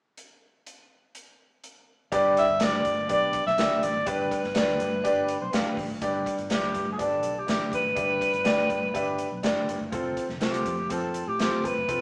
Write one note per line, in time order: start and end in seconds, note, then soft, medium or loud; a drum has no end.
0.17 closed hi-hat medium
0.66 closed hi-hat medium
1.15 closed hi-hat medium
1.64 closed hi-hat medium
2.12 2.33 G1 medium
2.12 2.81 G2 medium
2.12 2.43 D4 loud
2.12 2.43 G4 medium
2.12 2.43 B4 medium
2.12 2.44 D5 loud
2.12 kick loud
2.12 closed hi-hat medium
2.37 2.65 E5 medium
2.37 closed hi-hat medium
2.49 2.80 G1 medium
2.60 2.91 D4 medium
2.60 2.91 G4 medium
2.60 2.92 B4 medium
2.60 2.92 D5 medium
2.60 3.11 D5 medium
2.60 snare loud
2.60 closed hi-hat medium
2.73 snare soft
2.85 3.06 G1 medium
2.85 kick medium
2.85 closed hi-hat medium
3.08 3.41 B1 medium
3.08 3.40 D4 medium
3.08 3.40 G4 medium
3.08 3.40 B4 medium
3.08 3.41 D5 medium
3.08 kick medium
3.08 closed hi-hat medium
3.12 3.45 D5 loud
3.33 kick medium
3.33 closed hi-hat medium
3.46 3.57 B1 medium
3.46 3.85 E5 medium
3.46 snare soft
3.58 3.68 D2 medium
3.58 3.89 D4 medium
3.58 3.89 G4 medium
3.58 3.89 B4 medium
3.58 3.90 D5 medium
3.58 snare loud
3.58 closed hi-hat medium
3.83 3.93 A1 medium
3.83 4.09 D5 medium
3.83 closed hi-hat medium
3.96 4.05 G#1 medium
4.06 4.28 G1 loud
4.06 4.76 G2 medium
4.06 4.37 D4 medium
4.06 4.37 G4 medium
4.06 4.38 B4 medium
4.06 4.31 B4 medium
4.06 4.38 D5 loud
4.06 kick loud
4.06 closed hi-hat medium
4.31 5.43 B4 medium
4.31 kick medium
4.31 closed hi-hat medium
4.44 4.55 G1 medium
4.44 snare soft
4.55 4.77 D2 medium
4.55 4.86 D4 medium
4.55 4.86 G4 medium
4.55 4.87 B4 medium
4.55 4.87 D5 medium
4.55 snare loud
4.55 closed hi-hat medium
4.69 snare soft
4.80 5.01 G2 medium
4.80 closed hi-hat medium
5.04 5.35 G1 medium
5.04 5.35 D4 medium
5.04 5.35 G4 medium
5.04 5.35 B4 medium
5.04 5.36 D5 medium
5.04 closed hi-hat medium
5.28 closed hi-hat medium
5.42 5.52 B1 medium
5.42 5.52 C5 medium
5.51 5.64 A1 medium
5.51 5.84 D4 medium
5.51 5.84 G4 medium
5.51 5.61 B4 medium
5.51 5.84 B4 medium
5.51 5.84 F5 medium
5.51 snare medium
5.51 closed hi-hat medium
5.60 5.70 A4 medium
5.69 5.78 B4 medium
5.77 5.88 A1 medium
5.77 kick medium
5.77 open hi-hat soft
5.90 6.00 G#1 medium
6.02 6.23 G1 medium
6.02 6.71 G2 medium
6.02 6.33 D4 medium
6.02 6.33 G4 medium
6.02 6.33 B4 medium
6.02 6.34 D5 medium
6.02 kick loud
6.02 closed hi-hat medium
6.26 kick medium
6.26 closed hi-hat medium
6.38 6.51 G1 medium
6.38 closed hi-hat soft
6.50 6.71 D2 medium
6.50 6.81 D4 medium
6.50 6.82 G4 medium
6.50 6.91 G4 medium
6.50 6.82 B4 medium
6.50 6.83 E5 medium
6.50 snare medium
6.50 closed hi-hat medium
6.64 snare soft
6.74 6.95 G2 medium
6.74 kick medium
6.74 closed hi-hat medium
6.92 7.03 G#4 medium
6.98 7.23 G1 medium
6.98 7.30 D4 medium
6.98 7.30 G4 medium
6.98 7.40 A4 medium
6.98 7.30 B4 medium
6.98 7.31 D5 medium
6.98 kick medium
6.98 closed hi-hat medium
7.23 7.44 B1 medium
7.23 closed hi-hat medium
7.38 7.49 G4 medium
7.47 7.59 A1 medium
7.47 7.79 D4 medium
7.47 7.79 G4 medium
7.47 7.72 G4 medium
7.47 7.79 B4 medium
7.47 7.80 E5 medium
7.47 snare medium
7.47 closed hi-hat medium
7.72 7.82 A1 medium
7.72 9.65 B4 loud
7.72 kick medium
7.72 closed hi-hat medium
7.85 7.95 G#1 medium
7.95 8.18 G1 medium
7.95 8.66 G2 medium
7.95 8.27 D4 medium
7.95 8.28 G4 medium
7.95 8.28 B4 medium
7.95 8.28 E5 medium
7.95 kick loud
7.95 closed hi-hat medium
8.21 kick medium
8.21 closed hi-hat medium
8.33 8.44 G1 medium
8.33 closed hi-hat soft
8.44 8.67 D2 medium
8.44 8.76 D4 medium
8.44 8.77 G4 medium
8.44 8.77 B4 medium
8.44 8.77 D5 medium
8.44 snare loud
8.44 closed hi-hat medium
8.59 snare soft
8.70 8.91 G2 medium
8.70 kick medium
8.70 closed hi-hat medium
8.94 9.26 G1 medium
8.94 9.25 D4 medium
8.94 9.26 G4 medium
8.94 9.26 B4 medium
8.94 9.26 E5 medium
8.94 kick medium
8.94 closed hi-hat medium
9.18 closed hi-hat medium
9.32 9.42 B1 medium
9.43 9.55 G1 loud
9.43 9.75 D4 medium
9.43 9.75 G4 medium
9.43 9.75 B4 medium
9.43 9.76 D5 medium
9.43 snare medium
9.43 closed hi-hat medium
9.69 9.79 G1 medium
9.69 closed hi-hat medium
9.81 9.91 F#1 medium
9.92 10.14 F1 loud
9.92 10.23 C4 medium
9.92 10.24 F4 medium
9.92 10.24 A4 medium
9.92 10.25 C5 medium
9.92 kick loud
9.92 closed hi-hat medium
10.17 kick medium
10.17 closed hi-hat medium
10.29 10.40 F1 medium
10.29 snare soft
10.40 10.63 C2 medium
10.40 10.72 C4 medium
10.40 10.73 F4 medium
10.40 10.93 G4 medium
10.40 10.73 A4 medium
10.40 10.73 C5 medium
10.40 snare medium
10.40 closed hi-hat medium
10.54 closed hi-hat medium
10.66 10.87 F2 medium
10.66 kick medium
10.66 closed hi-hat medium
10.90 11.22 F2 medium
10.90 11.21 C4 medium
10.90 11.22 F4 medium
10.90 11.22 A4 medium
10.90 11.29 A4 medium
10.90 11.22 C5 medium
10.90 kick medium
10.90 closed hi-hat medium
11.14 closed hi-hat medium
11.28 11.38 A2 medium
11.28 11.40 G4 medium
11.39 11.50 A1 medium
11.39 11.70 C4 medium
11.39 11.71 F4 medium
11.39 11.67 G4 medium
11.39 11.71 A4 medium
11.39 11.71 C5 medium
11.39 snare medium
11.39 closed hi-hat medium
11.64 11.74 G1 medium
11.64 12.01 B4 loud
11.64 kick medium
11.64 closed hi-hat medium
11.76 11.87 F#1 medium
11.88 12.01 F1 loud
11.88 12.01 C4 medium
11.88 12.01 F4 medium
11.88 12.01 A4 medium
11.88 kick loud
11.88 closed hi-hat medium